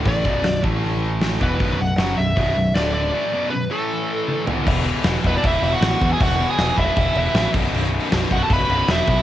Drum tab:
CC |----------------|----------------|----------------|x-x-x-x-x-x-x-x-|
HH |o---o---o---o---|o---o---o---o---|----------------|----------------|
SD |----o-------oo--|----o-------o---|----------------|----oo------o---|
T1 |----------------|----------------|------------o---|----------------|
FT |----------------|----------------|--------------o-|----------------|
BD |o-o---o-------o-|o-------o-------|----------------|o-----o-o-----o-|

CC |x-x-x-x-x-x-x-x-|x-x-x-x-x-x-x-x-|
HH |----------------|----------------|
SD |----o-------o---|----o-------o---|
T1 |----------------|----------------|
FT |----------------|----------------|
BD |o-----o-o-----o-|------o-o-----o-|